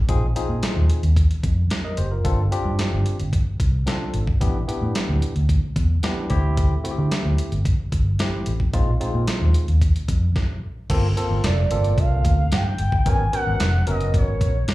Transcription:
0.09 fingered electric bass A#1, tine electric piano C4 D#4 F4 G#4, kick, closed hi-hat
0.36 tine electric piano C4 D#4 F4 G#4, closed hi-hat
0.49 fingered electric bass A#2
0.63 snare, closed hi-hat
0.76 fingered electric bass D#2
0.90 closed hi-hat
1.03 fingered electric bass D#2, closed hi-hat
1.17 kick, closed hi-hat
1.31 closed hi-hat
1.43 fingered electric bass F2, kick, closed hi-hat
1.70 snare, closed hi-hat
1.84 tine electric piano A#4 D#5
1.97 fingered electric bass F#1, tine electric piano G4 C5, closed hi-hat
2.11 tine electric piano F4 A#4
2.24 fingered electric bass G1, tine electric piano C4 D4 F4 A4, kick, closed hi-hat
2.51 tine electric piano C4 D4 F4 G4, closed hi-hat
2.65 fingered electric bass G2
2.79 snare, closed hi-hat
2.92 fingered electric bass G1
3.06 closed hi-hat
3.20 fingered electric bass G1, closed hi-hat
3.33 kick, closed hi-hat
3.60 fingered electric bass C2, kick, closed hi-hat
3.86 tine electric piano C4 D4 F4 A4, snare, closed hi-hat
4.14 fingered electric bass G#1, closed hi-hat
4.27 kick
4.41 fingered electric bass A1, tine electric piano B3 D4 E4 G4, kick, closed hi-hat
4.68 tine electric piano B3 D4 E4 G4, closed hi-hat
4.82 fingered electric bass A2
4.95 snare, closed hi-hat
5.09 fingered electric bass D2
5.22 closed hi-hat
5.36 fingered electric bass D2, closed hi-hat
5.49 kick, closed hi-hat
5.76 fingered electric bass E2, kick, closed hi-hat
6.03 tine electric piano B3 D4 E4 G4, snare, closed hi-hat
6.30 fingered electric bass D2, tine electric piano A3 C4 E4 G4, kick, closed hi-hat
6.57 kick, closed hi-hat
6.84 tine electric piano A3 C4 E4 F#4, closed hi-hat
6.91 tine electric piano G4
6.98 fingered electric bass D3
7.11 snare, closed hi-hat
7.25 fingered electric bass D2
7.38 closed hi-hat
7.52 fingered electric bass G1, closed hi-hat
7.65 kick, closed hi-hat
7.92 fingered electric bass G1, kick, closed hi-hat
8.19 tine electric piano A3 C4 E4 G4, snare, closed hi-hat
8.46 fingered electric bass A1, closed hi-hat
8.60 kick
8.73 fingered electric bass A#1, tine electric piano G#3 C4 D#4 F4, kick, closed hi-hat
9.00 tine electric piano G#3 C4 D#4 F4, closed hi-hat
9.14 fingered electric bass A#2
9.27 snare, closed hi-hat
9.41 fingered electric bass D#2
9.54 closed hi-hat
9.68 fingered electric bass D#2, closed hi-hat
9.82 kick, closed hi-hat
9.96 closed hi-hat
10.08 fingered electric bass F2, kick, closed hi-hat
10.36 kick, snare
10.90 fingered electric bass G1, tine electric piano A#3 C4 F4 A4, kick, closed hi-hat, crash
11.16 tine electric piano A#3 C4 F4 A4, closed hi-hat
11.31 fingered electric bass G1
11.44 fingered electric bass F1, soft synth lead D5, snare, closed hi-hat
11.71 fingered electric bass G1, tine electric piano A#3 C4 F4 A4, closed hi-hat
11.84 closed hi-hat
11.98 fingered electric bass C2, soft synth lead F5, kick, closed hi-hat
12.25 fingered electric bass D2, kick, closed hi-hat
12.52 fingered electric bass G2, soft synth lead G5, snare, closed hi-hat
12.78 fingered electric bass G1, closed hi-hat
12.92 fingered electric bass G1, kick
13.06 fingered electric bass G#1, tine electric piano B3 C#4 F#4 A#4, soft synth lead G#5, kick, closed hi-hat
13.33 tine electric piano B3 C#4 F#4 A#4, soft synth lead F#5, closed hi-hat
13.47 fingered electric bass G#1
13.60 fingered electric bass F1, snare, closed hi-hat
13.87 fingered electric bass F#1, tine electric piano B3 C#4 F#4 A#4, soft synth lead D#5, closed hi-hat
14.01 closed hi-hat
14.14 fingered electric bass G#1, soft synth lead C#5, kick, closed hi-hat
14.41 fingered electric bass A#1, kick, closed hi-hat
14.68 fingered electric bass G#2, snare, closed hi-hat

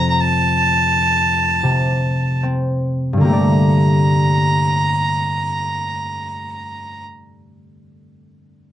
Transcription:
Already playing: harp F2 C3 A3 C4
0.10 fiddle A#5
0.20 fiddle A5
1.63 harp C3
2.43 harp C4
3.13 harp G2
3.17 harp D3 A#3
3.23 harp G4, fiddle A#5
3.29 harp A3 D5

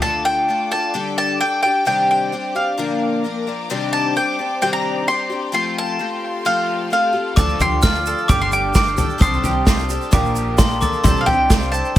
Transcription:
0.02 twelve-string acoustic guitar D3 A3 D4 F4 A4, string section A4 D5 F5 D6, mandolin A5
0.25 mandolin G5
0.49 twelve-string acoustic guitar A3 D4 F4 A4
0.71 twelve-string acoustic guitar D4 F4 A4, mandolin A5
0.94 twelve-string acoustic guitar G2 D3 G3 D4 G4 A4, string section A4 G5
1.18 mandolin A5
1.40 twelve-string acoustic guitar G3 D4 G4 A4, mandolin G5
1.63 twelve-string acoustic guitar G3 D4 G4 A4, mandolin G5
1.85 twelve-string acoustic guitar C3 D#3 G3 C4 D4 G4, string section C5 D5, mandolin G5
2.11 mandolin G5
2.32 twelve-string acoustic guitar G3 C4 D4 G4
2.55 twelve-string acoustic guitar G3 C4 D4 G4, mandolin F5
2.77 twelve-string acoustic guitar A#2 D3 F3 A#3 D4 A#4, string section A#4 D5 F5 D6
3.24 twelve-string acoustic guitar F3 A#3 D4 A#4
3.47 twelve-string acoustic guitar F3 A#3 D4 A#4
3.69 twelve-string acoustic guitar C3 D#3 G3 C4 D4 G4, string section C5 D5 G5
3.93 mandolin A5
4.16 twelve-string acoustic guitar G3 C4 D4 G4, mandolin G5
4.39 twelve-string acoustic guitar G3 C4 D4 G4
4.62 twelve-string acoustic guitar C3 D#3 G3 C4 D4 G4, mandolin G5
4.73 mandolin A#5
5.08 twelve-string acoustic guitar G3 C4 D4 G4, mandolin C6
5.30 twelve-string acoustic guitar G3 C4 D4 G4
5.52 twelve-string acoustic guitar F3 A3 C4 F4 G4, string section A4 F5 C6, mandolin C6
5.78 mandolin A5
5.99 twelve-string acoustic guitar A3 C4 F4 G4
6.45 twelve-string acoustic guitar F3 A3 C4 F4 G4, mandolin F5
6.90 twelve-string acoustic guitar A3 C4 F4 G4, mandolin F5
7.13 twelve-string acoustic guitar C4 F4 G4
7.36 upright bass D2, upright piano D2 D3 F3 A3 D4 A4 D5, twelve-string acoustic guitar D3 F3 D4 F4 A4, mandolin A4 A5, string section D5 A5, glockenspiel D6, kick, floor tom, shaker
7.49 shaker
7.60 upright bass D2, mandolin G4 C6, floor tom, shaker
7.82 twelve-string acoustic guitar F3 D4 F4 A4, mandolin F4, glockenspiel F6, kick, snare, shaker
7.95 shaker
8.06 mandolin A4, shaker
8.18 shaker
8.28 upright bass G1, upright piano G1 G2 G3 A3 D4 A4 D5, twelve-string acoustic guitar G2 D3 G3 D4 G4 A4, mandolin G4 D6, string section A4 G5, glockenspiel D6, kick, floor tom, shaker
8.40 mandolin C6, shaker
8.52 mandolin G4 D6, shaker
8.72 twelve-string acoustic guitar G3 D4 G4 A4, mandolin D6, kick, snare, shaker
8.87 shaker
8.96 twelve-string acoustic guitar G3 D4 G4 A4, mandolin A4, floor tom, shaker
9.10 shaker
9.18 upright bass C2, upright piano C2 C3 G3 D4 C5, twelve-string acoustic guitar C3 D#3 G3 C4 D4 G4, mandolin A4 C6, glockenspiel D#6, kick, floor tom, shaker
9.24 string section C5
9.33 shaker
9.44 upright bass C2, mandolin G4, floor tom, shaker
9.65 twelve-string acoustic guitar G3 C4 D4 G4, mandolin F4, kick, snare, shaker
9.78 shaker
9.89 twelve-string acoustic guitar G3 C4 D4 G4, mandolin A4, shaker
10.01 shaker
10.11 upright bass A#1, upright piano A#1 A#2 F3 A#3 D4 A#4 D5, twelve-string acoustic guitar A#2 D3 F3 A#3 D4 A#4, mandolin G4, string section A#4 D5 F5, glockenspiel D6, kick, floor tom, shaker
10.25 shaker
10.36 mandolin G4, shaker
10.57 twelve-string acoustic guitar F3 A#3 D4 A#4, glockenspiel C6, kick, snare, shaker
10.70 shaker
10.80 twelve-string acoustic guitar F3 A#3 D4 A#4, mandolin A4, glockenspiel D6, floor tom, shaker
10.93 shaker
11.03 upright bass C2, upright piano C2 C3 G3 D4 C5 D5, twelve-string acoustic guitar C3 D#3 G3 C4 D4 G4, mandolin A4 A5, string section C5 G5, glockenspiel C6, kick, floor tom, shaker
11.16 shaker
11.21 mandolin F5
11.26 upright bass C2, mandolin G4 G5, floor tom
11.50 twelve-string acoustic guitar C4 D4 G4, mandolin F4, kick, snare, shaker
11.62 shaker
11.72 mandolin A4 A5, shaker
11.85 shaker

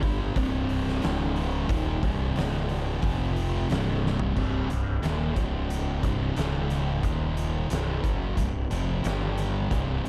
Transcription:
0.03 fingered electric bass G1, distorted electric guitar G2 D3 G3, kick, open hi-hat
0.36 fingered electric bass C1, distorted electric guitar C2 G2 C3, kick, open hi-hat
0.69 open hi-hat
0.88 snare
1.02 fingered electric bass C#1, distorted electric guitar C#2 G#2 C#3, snare, open hi-hat
1.36 open hi-hat
1.69 fingered electric bass D#1, distorted electric guitar D#2 A#2 D#3, kick, open hi-hat
2.03 fingered electric bass C1, distorted electric guitar C2 G2 C3, kick, open hi-hat
2.36 fingered electric bass C#1, distorted electric guitar C#2 G#2 C#3, snare, open hi-hat
2.69 open hi-hat
3.02 fingered electric bass F1, distorted electric guitar F2 C3 F3, kick, open hi-hat
3.36 open hi-hat
3.70 fingered electric bass C1, distorted electric guitar C2 G2 C3, snare, open hi-hat
4.06 snare
4.19 floor tom
4.35 fingered electric bass C1, distorted electric guitar C2 G2 C3, kick, crash
4.70 fingered electric bass C1, distorted electric guitar C2 G2, closed hi-hat
5.03 fingered electric bass D#1, distorted electric guitar D#2 A#2 D#3, snare, closed hi-hat
5.36 fingered electric bass C#1, distorted electric guitar C#2 G#2 C#3, kick, closed hi-hat
5.70 closed hi-hat
6.02 fingered electric bass C1, distorted electric guitar C2 G2 C3, kick, closed hi-hat
6.36 fingered electric bass C#1, distorted electric guitar C#2 G#2 C#3, snare, closed hi-hat
6.70 closed hi-hat
7.03 fingered electric bass D#1, distorted electric guitar D#2 A#2 D#3, kick, closed hi-hat
7.37 closed hi-hat
7.69 fingered electric bass C1, distorted electric guitar C2 G2 C3, snare, closed hi-hat
8.02 fingered electric bass F#1, distorted electric guitar F#2 C#3 F#3, kick, closed hi-hat
8.37 fingered electric bass C1, distorted electric guitar C2 G2, kick, closed hi-hat
8.71 fingered electric bass F1, distorted electric guitar F2 C3 F3, closed hi-hat
9.04 fingered electric bass G1, distorted electric guitar G2 D3 G3, snare, closed hi-hat
9.38 closed hi-hat
9.71 fingered electric bass C1, distorted electric guitar C2 G2 C3, kick, closed hi-hat
10.04 fingered electric bass C1, distorted electric guitar C2 G2, closed hi-hat

